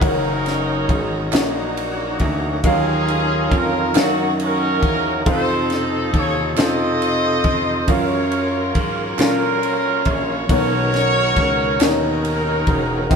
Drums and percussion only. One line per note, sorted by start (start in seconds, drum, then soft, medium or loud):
0.02 kick loud
0.02 ride medium
0.46 snare soft
0.46 ride soft
0.89 kick medium
0.89 ride soft
1.33 snare medium
1.33 clap medium
1.33 ride medium
1.77 ride soft
2.19 kick medium
2.19 ride soft
2.64 kick loud
2.64 ride medium
3.08 ride soft
3.52 kick medium
3.52 ride soft
3.95 snare medium
3.95 clap medium
3.95 ride medium
4.40 ride soft
4.83 kick medium
4.83 ride soft
5.26 kick loud
5.26 ride medium
5.70 snare soft
5.70 ride soft
6.14 kick medium
6.14 ride soft
6.57 snare medium
6.57 clap medium
6.57 ride medium
7.02 ride soft
7.44 kick medium
7.44 ride soft
7.88 kick loud
7.88 ride medium
8.32 ride soft
8.75 kick medium
8.75 ride soft
9.19 snare medium
9.19 clap medium
9.19 ride medium
9.63 ride soft
10.05 kick medium
10.05 ride soft
10.49 kick loud
10.49 ride medium
10.94 snare soft
10.94 ride soft
11.37 kick medium
11.37 ride soft
11.80 snare medium
11.80 clap medium
11.80 ride medium
12.25 ride soft
12.67 kick medium
12.67 ride soft
13.11 kick loud
13.11 ride medium